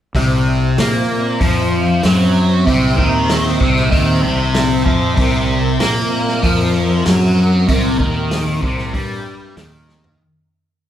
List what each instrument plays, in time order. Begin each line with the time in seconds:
0.15 fingered electric bass C2, distorted electric guitar C3, string machine C4 C5 E5, kick, open hi-hat
0.78 fingered electric bass A#2, distorted electric guitar A#3, snare, open hi-hat
1.40 fingered electric bass F2, distorted electric guitar F3, kick, open hi-hat
2.03 fingered electric bass F#2, distorted electric guitar F#3, snare, open hi-hat
2.66 fingered electric bass C2, distorted electric guitar C3, kick, open hi-hat
2.98 fingered electric bass D#2, distorted electric guitar D#3, kick
3.29 snare, open hi-hat
3.60 fingered electric bass C2, distorted electric guitar C3, kick
3.76 snare
3.91 fingered electric bass D#2, distorted electric guitar D#3, kick, open hi-hat
4.23 fingered electric bass C2, distorted electric guitar C3
4.54 snare, open hi-hat
4.85 fingered electric bass F2, distorted electric guitar F3, kick
5.16 fingered electric bass C2, distorted electric guitar C3, string machine A#4, kick, open hi-hat
5.80 fingered electric bass A#2, distorted electric guitar A#3, snare, open hi-hat
6.28 snare
6.43 fingered electric bass F2, distorted electric guitar F3, kick, open hi-hat
7.06 fingered electric bass F#2, distorted electric guitar F#3, snare, open hi-hat
7.68 fingered electric bass C2, distorted electric guitar C3, kick, open hi-hat
7.99 fingered electric bass D#2, distorted electric guitar D#3, kick
8.31 snare, open hi-hat
8.62 fingered electric bass C2, distorted electric guitar C3, kick
8.78 snare
8.93 fingered electric bass G2, distorted electric guitar G3, kick, open hi-hat
9.57 fingered electric bass D#2, distorted electric guitar D#3, snare, open hi-hat
9.89 snare
10.04 floor tom